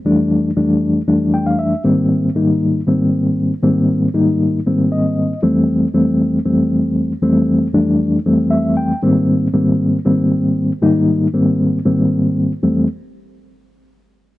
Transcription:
reed electric piano
0.05 F2 E3 G3 A3 D4
0.57 F2 E3 G3 A3 D4
1.07 F2 E3 G3 A3 D4
1.34 G5
1.46 F5
1.59 E5
1.84 G#2 D#3 G3 A#3 C4
2.35 G#2 D#3 G3 A#3 D#4
2.87 G#2 D#3 G3 A#3 C4
3.63 G#2 D#3 G3 A#3 C4
4.14 G#2 D#3 G3 A#3 D#4
4.67 G#2 D#3 G3 A#3 C4
4.92 D#5
5.43 F2 E3 G3 A3 C4
5.94 F2 E3 G3 A3 C4
6.45 F2 E3 G3 A3 C4
7.22 F2 E3 G3 A3 C4
7.74 F2 E3 G3 A3 D4
8.26 F2 E3 G3 A3 C4
8.51 E5
8.77 G5
9.03 G#2 D#3 G3 A#3 C4
9.53 G#2 D#3 G3 A#3 C4
10.05 G#2 D#3 G3 A#3 C4
10.82 G#2 D#3 G3 A#3 D#4
11.34 G#2 D#3 G3 A#3 C4
11.85 G#2 D#3 G3 A#3 C4
12.63 F2 E3 G3 A3 C4

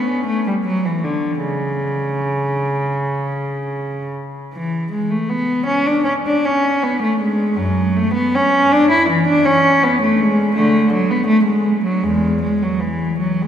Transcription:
cello
Already playing: B3
0.26 A3
0.47 G3
0.64 F#3
0.85 E3
1.04 D3
1.43 C#3
4.53 E3
4.92 G#3
5.10 A3
5.29 B3
5.66 C#4
5.86 D4
6.04 C#4
6.26 D4
6.45 C#4
6.83 B3
7.02 A3
7.20 G#3
7.56 F#2 F#3
7.96 A3
8.14 B3
8.35 C#4
8.72 D4
8.91 E4
9.09 E3
9.28 D4
9.45 C#4
9.83 B3
10.02 A3
10.19 G#3
10.56 D3 A3
10.93 F#3
11.10 B3
11.27 A3
11.44 G#3
11.84 F#3
12.03 E2 G#3
12.42 G#3
12.62 F#3
12.80 E3
13.19 F#3
13.42 G#3

